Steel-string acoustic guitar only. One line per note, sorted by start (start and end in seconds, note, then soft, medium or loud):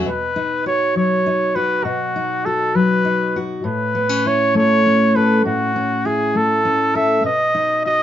0.05 1.82 B2 soft
0.36 1.25 D#4 soft
0.66 1.55 F#4 soft
0.96 2.74 F#3 soft
1.26 1.82 D#4 soft
1.56 1.82 F#4 soft
1.85 3.62 B2 soft
2.16 3.04 D#4 soft
2.46 3.35 F#4 soft
2.75 3.65 F#3 soft
3.05 3.62 D#4 soft
3.36 3.62 F#4 soft
3.64 5.41 A2 medium
3.95 4.09 B3 soft
4.09 4.85 C#4 soft
4.26 5.42 E4 soft
4.55 5.41 A3 soft
4.86 5.75 C#4 soft
5.16 5.42 A4 soft
5.45 7.22 A2 soft
5.76 6.65 C#4 soft
6.05 7.21 E4 soft
6.35 7.21 A3 soft
6.65 7.27 C#4 soft
6.95 7.21 A4 soft
7.24 8.03 B2 soft
7.55 8.03 D#4 soft
7.86 8.03 F#4 soft